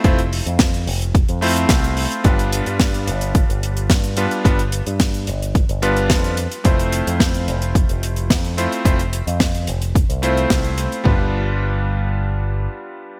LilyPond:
<<
  \new Staff \with { instrumentName = "Electric grand piano" } { \time 4/4 \key g \mixolydian \tempo 4 = 109 <a c' e' f' c''>16 r2 r16 <a c' e' f' c''>4. | <g b d' f' b'>2.~ <g b d' f' b'>8 <g b d' f' b'>8 | <g b d' f' b'>16 r2 r16 <g b d' f' b'>4 r8 | <a c' e' f' c''>2.~ <a c' e' f' c''>8 <a c' e' f' c''>8 |
<a c' e' f' c''>16 r2 r16 <a c' e' f' c''>4. | <g b d' f' b'>1 | }
  \new Staff \with { instrumentName = "Picked electric bass" } { \clef bass \time 4/4 \key g \mixolydian f,,8. f,8. f,,8. f,8. c,8. r16 | g,,8. g,8. g,,8. g,,8. g,8. r16 | g,,8. g,8. g,,8. g,,8. f,8. r16 | f,,8. f,8. f,,8. f,,8. f,8. r16 |
f,,8. f,8. f,,8. c,8. c,8. r16 | g,,2. r4 | }
  \new DrumStaff \with { instrumentName = "Drums" } \drummode { \time 4/4 <hh bd>16 hh16 hho16 hh16 <hh bd sn>16 hh16 hho16 hh16 <hh bd>16 hh16 hho16 hh16 <hh bd sn>16 hh16 hho16 hh16 | <hh bd>16 hh16 hh16 hh16 <hh bd sn>16 hh16 hh16 hh16 <hh bd>16 hh16 hh16 hh16 <hh bd sn>16 hh16 hh16 hh16 | <hh bd>16 hh16 hh16 hh16 <hh bd sn>16 hh16 hh16 hh16 <hh bd>16 hh16 hh16 hh16 <hh bd sn>16 hh16 hh16 hh16 | <hh bd>16 hh16 hh16 hh16 <hh bd sn>16 hh16 hh16 hh16 <hh bd>16 hh16 hh16 hh16 <hh bd sn>16 hh16 hh16 hh16 |
<hh bd>16 hh16 hh16 hh16 <hh bd sn>16 hh16 hh16 hh16 <hh bd>16 hh16 hh16 hh16 <hh bd sn>16 hh16 hh16 hh16 | <bd tomfh>4 r4 r4 r4 | }
>>